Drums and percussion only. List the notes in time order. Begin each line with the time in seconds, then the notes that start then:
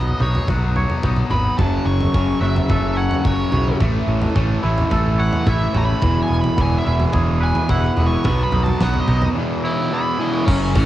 0.07 floor tom
0.20 mid tom
0.35 floor tom
0.48 kick, floor tom
0.76 floor tom
0.90 floor tom
1.03 kick, mid tom
1.16 mid tom
1.31 floor tom
1.58 kick, floor tom
2.00 floor tom
2.14 kick
2.56 floor tom
2.69 kick, floor tom
3.11 floor tom
3.25 kick
3.52 floor tom
3.80 kick, floor tom
4.22 floor tom
4.36 kick
4.78 floor tom
4.91 kick, floor tom
5.33 floor tom
5.47 kick
5.75 floor tom
6.02 kick, floor tom
6.44 floor tom
6.58 kick
7.00 floor tom
7.13 kick, floor tom
7.55 floor tom
7.69 kick
7.97 floor tom
8.24 kick, floor tom
8.52 floor tom
8.66 floor tom
8.81 kick, snare
8.94 floor tom
9.08 mid tom
9.22 floor tom
10.48 kick, crash
10.75 kick, open hi-hat